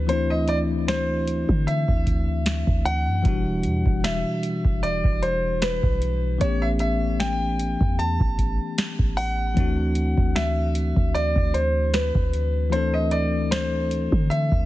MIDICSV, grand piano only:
0, 0, Header, 1, 2, 480
1, 0, Start_track
1, 0, Tempo, 789474
1, 56, Time_signature, 4, 2, 24, 8
1, 8910, End_track
2, 0, Start_track
2, 0, Title_t, "Grand piano"
2, 0, Program_c, 0, 0
2, 0, Note_on_c, 0, 71, 90
2, 54, Note_on_c, 0, 72, 99
2, 70, Note_off_c, 0, 71, 0
2, 185, Note_on_c, 0, 75, 95
2, 188, Note_off_c, 0, 72, 0
2, 288, Note_off_c, 0, 75, 0
2, 295, Note_on_c, 0, 74, 93
2, 349, Note_off_c, 0, 74, 0
2, 536, Note_on_c, 0, 72, 93
2, 1016, Note_on_c, 0, 76, 93
2, 1030, Note_off_c, 0, 72, 0
2, 1735, Note_on_c, 0, 78, 109
2, 1757, Note_off_c, 0, 76, 0
2, 2431, Note_off_c, 0, 78, 0
2, 2456, Note_on_c, 0, 76, 97
2, 2936, Note_on_c, 0, 74, 98
2, 2951, Note_off_c, 0, 76, 0
2, 3176, Note_on_c, 0, 72, 92
2, 3183, Note_off_c, 0, 74, 0
2, 3416, Note_on_c, 0, 71, 93
2, 3423, Note_off_c, 0, 72, 0
2, 3872, Note_off_c, 0, 71, 0
2, 3897, Note_on_c, 0, 73, 103
2, 4024, Note_on_c, 0, 76, 102
2, 4030, Note_off_c, 0, 73, 0
2, 4055, Note_off_c, 0, 76, 0
2, 4135, Note_on_c, 0, 76, 99
2, 4376, Note_on_c, 0, 79, 102
2, 4383, Note_off_c, 0, 76, 0
2, 4857, Note_on_c, 0, 81, 101
2, 4870, Note_off_c, 0, 79, 0
2, 5552, Note_off_c, 0, 81, 0
2, 5575, Note_on_c, 0, 78, 118
2, 6296, Note_on_c, 0, 76, 100
2, 6317, Note_off_c, 0, 78, 0
2, 6776, Note_on_c, 0, 74, 97
2, 6790, Note_off_c, 0, 76, 0
2, 7016, Note_on_c, 0, 72, 84
2, 7023, Note_off_c, 0, 74, 0
2, 7257, Note_on_c, 0, 71, 89
2, 7263, Note_off_c, 0, 72, 0
2, 7735, Note_on_c, 0, 72, 98
2, 7751, Note_off_c, 0, 71, 0
2, 7865, Note_on_c, 0, 75, 92
2, 7869, Note_off_c, 0, 72, 0
2, 7974, Note_on_c, 0, 74, 90
2, 7979, Note_off_c, 0, 75, 0
2, 8215, Note_on_c, 0, 72, 91
2, 8222, Note_off_c, 0, 74, 0
2, 8695, Note_on_c, 0, 76, 100
2, 8710, Note_off_c, 0, 72, 0
2, 8910, Note_off_c, 0, 76, 0
2, 8910, End_track
0, 0, End_of_file